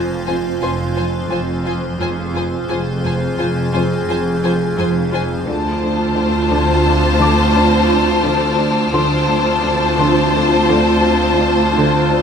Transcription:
Already playing: F1 F2 C4 F4 C5 G#5
0.26 F2 F4 C5 G#5
0.61 F1 F2 F3 F4 C5 G#5 C6
0.96 F3 F4 C5 G#5
1.30 F1 F2 F4 C5 G#5
1.64 F3 F4 C5 G#5
1.99 F1 F2 C4 F4 G#4 C5 G#5
2.33 F2 F4 C5 G#5
2.69 F1 F2 F4 C5 G#5
3.03 F2 F4 C5 G#5
3.38 F1 F2 F4 C5 G#5
3.73 F2 F4 C5 G#5
4.08 F1 F2 F3 F4 C5 G#5
4.43 F3 F4 C5 G#5
4.78 F1 F2 F4 C5 G#5
5.12 F3 F4 C5 G#5
5.47 D2 D3 C4 F4 C5 A5 D6 F6
5.82 D3
6.16 D3 E6
6.51 D3
6.86 D3
7.20 D3 D6
7.55 D4
7.90 D4
8.25 D3
8.60 D4
8.94 D2 D3 C4 F4 C5 A5 C6
9.30 D3
9.65 D3
10.00 D3 C5 C6
10.35 D3
10.69 D3
11.04 D4
11.40 D4
11.75 D3
12.10 D4

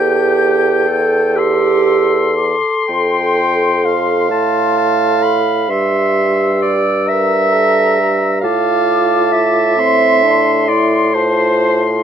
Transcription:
Already playing: E2 G4 A4 G5 G6
0.88 A4
1.36 G4 C6 E6
1.85 E6
2.37 D6
2.88 F2 G5 C6
3.85 F5
4.30 A2 A5 C6
4.77 A5
5.23 B5
5.69 G2 G4 E5 C6 E6
6.62 D5
7.07 A#4 E5 A#5
7.53 A4
7.99 G4
8.41 A2 F4 F5 A5 D6
9.33 E5
9.78 C4 C6
10.23 D4
10.68 E4 D5
11.14 F4 C5 A5

